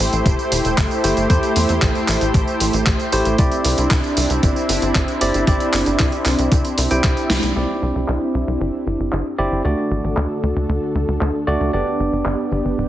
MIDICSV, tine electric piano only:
0, 0, Header, 1, 2, 480
1, 0, Start_track
1, 0, Tempo, 521739
1, 1196, Time_signature, 4, 2, 24, 8
1, 11854, End_track
2, 0, Start_track
2, 0, Title_t, "Tine electric piano"
2, 0, Program_c, 0, 4
2, 0, Note_on_c, 0, 57, 80
2, 0, Note_on_c, 0, 64, 72
2, 0, Note_on_c, 0, 67, 71
2, 0, Note_on_c, 0, 72, 88
2, 928, Note_off_c, 0, 57, 0
2, 928, Note_off_c, 0, 64, 0
2, 928, Note_off_c, 0, 67, 0
2, 928, Note_off_c, 0, 72, 0
2, 956, Note_on_c, 0, 57, 99
2, 956, Note_on_c, 0, 64, 94
2, 956, Note_on_c, 0, 67, 89
2, 956, Note_on_c, 0, 72, 108
2, 1167, Note_off_c, 0, 57, 0
2, 1167, Note_off_c, 0, 64, 0
2, 1167, Note_off_c, 0, 67, 0
2, 1167, Note_off_c, 0, 72, 0
2, 1196, Note_on_c, 0, 57, 80
2, 1196, Note_on_c, 0, 64, 73
2, 1196, Note_on_c, 0, 67, 73
2, 1196, Note_on_c, 0, 72, 92
2, 2847, Note_off_c, 0, 57, 0
2, 2847, Note_off_c, 0, 64, 0
2, 2847, Note_off_c, 0, 67, 0
2, 2847, Note_off_c, 0, 72, 0
2, 2876, Note_on_c, 0, 72, 113
2, 2877, Note_on_c, 0, 57, 104
2, 2877, Note_on_c, 0, 64, 96
2, 2877, Note_on_c, 0, 67, 95
2, 3087, Note_off_c, 0, 72, 0
2, 3088, Note_off_c, 0, 57, 0
2, 3088, Note_off_c, 0, 64, 0
2, 3088, Note_off_c, 0, 67, 0
2, 3115, Note_on_c, 0, 60, 80
2, 3116, Note_on_c, 0, 64, 70
2, 3116, Note_on_c, 0, 67, 74
2, 3116, Note_on_c, 0, 74, 89
2, 4767, Note_off_c, 0, 60, 0
2, 4767, Note_off_c, 0, 64, 0
2, 4767, Note_off_c, 0, 67, 0
2, 4767, Note_off_c, 0, 74, 0
2, 4796, Note_on_c, 0, 60, 105
2, 4796, Note_on_c, 0, 64, 93
2, 4796, Note_on_c, 0, 67, 97
2, 4796, Note_on_c, 0, 74, 117
2, 5007, Note_off_c, 0, 60, 0
2, 5007, Note_off_c, 0, 64, 0
2, 5007, Note_off_c, 0, 67, 0
2, 5007, Note_off_c, 0, 74, 0
2, 5036, Note_on_c, 0, 60, 79
2, 5036, Note_on_c, 0, 64, 70
2, 5036, Note_on_c, 0, 67, 71
2, 5036, Note_on_c, 0, 74, 92
2, 6332, Note_off_c, 0, 60, 0
2, 6332, Note_off_c, 0, 64, 0
2, 6332, Note_off_c, 0, 67, 0
2, 6332, Note_off_c, 0, 74, 0
2, 6356, Note_on_c, 0, 60, 91
2, 6356, Note_on_c, 0, 64, 88
2, 6356, Note_on_c, 0, 67, 83
2, 6356, Note_on_c, 0, 79, 105
2, 6927, Note_off_c, 0, 64, 0
2, 6927, Note_off_c, 0, 79, 0
2, 6928, Note_off_c, 0, 60, 0
2, 6928, Note_off_c, 0, 67, 0
2, 6955, Note_on_c, 0, 64, 63
2, 6955, Note_on_c, 0, 67, 63
2, 6955, Note_on_c, 0, 74, 76
2, 6956, Note_on_c, 0, 60, 69
2, 8607, Note_off_c, 0, 60, 0
2, 8607, Note_off_c, 0, 64, 0
2, 8607, Note_off_c, 0, 67, 0
2, 8607, Note_off_c, 0, 74, 0
2, 8634, Note_on_c, 0, 64, 85
2, 8634, Note_on_c, 0, 74, 95
2, 8635, Note_on_c, 0, 60, 92
2, 8635, Note_on_c, 0, 67, 83
2, 8846, Note_off_c, 0, 64, 0
2, 8846, Note_off_c, 0, 74, 0
2, 8847, Note_off_c, 0, 60, 0
2, 8847, Note_off_c, 0, 67, 0
2, 8874, Note_on_c, 0, 57, 68
2, 8874, Note_on_c, 0, 62, 63
2, 8874, Note_on_c, 0, 66, 66
2, 8875, Note_on_c, 0, 74, 79
2, 10526, Note_off_c, 0, 57, 0
2, 10526, Note_off_c, 0, 62, 0
2, 10526, Note_off_c, 0, 66, 0
2, 10527, Note_off_c, 0, 74, 0
2, 10555, Note_on_c, 0, 57, 91
2, 10555, Note_on_c, 0, 62, 81
2, 10555, Note_on_c, 0, 74, 103
2, 10556, Note_on_c, 0, 66, 87
2, 10767, Note_off_c, 0, 57, 0
2, 10767, Note_off_c, 0, 62, 0
2, 10767, Note_off_c, 0, 66, 0
2, 10767, Note_off_c, 0, 74, 0
2, 10794, Note_on_c, 0, 62, 64
2, 10794, Note_on_c, 0, 67, 68
2, 10794, Note_on_c, 0, 74, 79
2, 10795, Note_on_c, 0, 59, 74
2, 11854, Note_off_c, 0, 59, 0
2, 11854, Note_off_c, 0, 62, 0
2, 11854, Note_off_c, 0, 67, 0
2, 11854, Note_off_c, 0, 74, 0
2, 11854, End_track
0, 0, End_of_file